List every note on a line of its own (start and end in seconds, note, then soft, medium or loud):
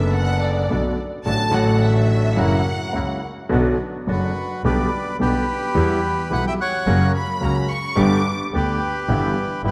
0.00 0.63 F#1 medium
0.00 0.64 F#1 loud
0.00 0.63 F#2 medium
0.00 0.62 D3 medium
0.00 0.63 A3 medium
0.00 0.63 B3 medium
0.00 0.64 B3 medium
0.00 0.64 D4 medium
0.00 0.64 F#4 medium
0.00 0.64 A4 medium
0.00 0.14 E5 medium
0.14 0.41 F#5 medium
0.41 0.98 D5 medium
0.70 0.94 B1 medium
0.70 0.94 B2 medium
0.70 0.94 D3 medium
0.70 0.94 A3 soft
0.70 0.94 B3 medium
0.70 0.94 B3 soft
0.70 0.94 D4 soft
0.70 0.94 F#4 medium
0.70 0.94 A4 medium
1.25 1.49 A1 medium
1.25 1.50 A1 medium
1.25 1.49 A2 medium
1.25 1.48 D3 soft
1.25 1.49 F#3 soft
1.25 1.49 A3 soft
1.25 1.50 A3 medium
1.25 1.50 D4 medium
1.25 1.49 F#4 medium
1.25 1.50 F#4 medium
1.25 1.52 A5 loud
1.50 2.33 A1 medium
1.50 2.33 A1 loud
1.50 2.33 A2 medium
1.50 2.32 D3 medium
1.50 2.32 F#3 medium
1.50 2.33 A3 medium
1.50 2.34 D4 medium
1.50 2.34 F#4 medium
1.54 2.34 F#4 medium
1.54 1.83 F#5 medium
1.82 2.38 E5 medium
2.36 2.62 F#1 medium
2.36 2.61 F#2 medium
2.36 2.61 C#3 medium
2.36 2.61 F#3 medium
2.36 2.61 A#3 medium
2.36 2.61 E4 medium
2.36 2.62 F#4 medium
2.36 3.23 F#5 medium
2.92 3.17 C#2 medium
2.92 3.18 C#2 medium
2.92 3.17 C#3 medium
2.92 3.18 F#3 soft
2.92 3.18 A#3 soft
2.92 3.19 A#3 medium
2.92 3.18 E4 medium
2.92 3.19 E4 soft
2.92 3.19 F#4 medium
3.49 3.74 B1 medium
3.49 3.75 B1 medium
3.49 3.74 B2 medium
3.49 3.74 D3 medium
3.49 3.74 F#3 medium
3.49 3.74 B3 medium
3.49 3.75 B3 medium
3.49 3.75 D4 medium
3.49 3.74 F#4 medium
3.49 3.75 F#4 medium
4.07 4.31 F#1 medium
4.07 4.31 F#2 medium
4.07 4.31 D3 medium
4.07 4.31 F#3 soft
4.07 4.31 B3 soft
4.07 4.31 D4 soft
4.07 4.31 F#4 medium
4.11 4.62 F#4 medium
4.11 4.63 B4 medium
4.63 4.87 B1 medium
4.63 4.88 B1 medium
4.63 4.88 B2 medium
4.63 4.88 D3 medium
4.63 4.88 G3 medium
4.63 4.88 B3 medium
4.63 4.88 D4 medium
4.63 4.88 G4 medium
4.63 5.17 B4 medium
4.63 5.17 D5 medium
5.19 5.43 B1 medium
5.19 5.43 B2 medium
5.19 5.43 D3 soft
5.19 5.43 G3 soft
5.19 5.43 B3 medium
5.19 5.43 B3 soft
5.19 5.44 D4 medium
5.19 5.43 G4 medium
5.19 5.44 G4 medium
5.19 6.28 G4 medium
5.19 6.32 B4 medium
5.75 5.99 E2 medium
5.75 5.99 E3 medium
5.75 5.99 G3 medium
5.75 5.99 B3 medium
5.75 5.99 E4 medium
5.75 5.99 G4 medium
6.30 6.54 B1 medium
6.30 6.55 B2 medium
6.30 6.54 E3 medium
6.30 6.55 G3 soft
6.30 6.54 B3 soft
6.30 6.55 B3 soft
6.30 6.55 E4 soft
6.30 6.55 G4 medium
6.30 6.46 B4 medium
6.30 6.45 F#5 loud
6.47 6.54 E5 medium
6.47 6.53 G5 loud
6.61 7.12 C#5 medium
6.61 7.12 F#5 loud
6.86 7.10 F#1 medium
6.86 7.10 F#2 medium
6.86 7.10 C#3 medium
6.86 7.10 F#3 medium
6.86 7.10 A#3 medium
6.86 7.10 C#4 medium
6.86 7.10 F#4 medium
7.15 7.41 B5 medium
7.41 7.65 C#2 medium
7.41 7.66 C#2 medium
7.41 7.65 C#3 medium
7.41 7.65 F#3 soft
7.41 7.65 A#3 soft
7.41 7.66 A#3 medium
7.41 7.66 C#4 medium
7.41 7.65 F#4 medium
7.41 7.66 F#4 medium
7.41 7.56 A#5 medium
7.56 7.70 B5 medium
7.69 7.97 C#6 medium
7.95 8.20 G1 loud
7.95 8.21 G1 medium
7.95 8.20 G2 medium
7.95 8.20 D3 medium
7.95 8.20 G3 medium
7.95 8.20 B3 medium
7.95 8.21 B3 medium
7.95 8.21 D4 medium
7.95 8.20 G4 medium
7.95 8.21 G4 loud
7.95 8.39 D6 loud
8.52 8.76 D2 medium
8.52 8.77 D2 medium
8.52 8.77 D3 medium
8.52 8.77 G3 soft
8.52 8.77 B3 medium
8.52 8.77 D4 soft
8.52 8.77 G4 medium
8.52 9.62 B4 medium
8.57 9.62 G4 medium
9.08 9.32 G1 medium
9.08 9.32 G2 medium
9.08 9.32 E3 medium
9.08 9.32 G3 medium
9.08 9.32 B3 medium
9.08 9.32 E4 medium
9.08 9.32 G4 medium
9.63 9.71 G1 medium
9.63 9.71 G2 medium
9.63 9.71 E3 medium
9.63 9.71 G3 soft
9.63 9.71 B3 medium
9.63 9.71 B3 soft
9.63 9.71 E4 soft
9.63 9.71 G4 medium
9.68 9.71 G4 medium
9.68 9.71 B4 medium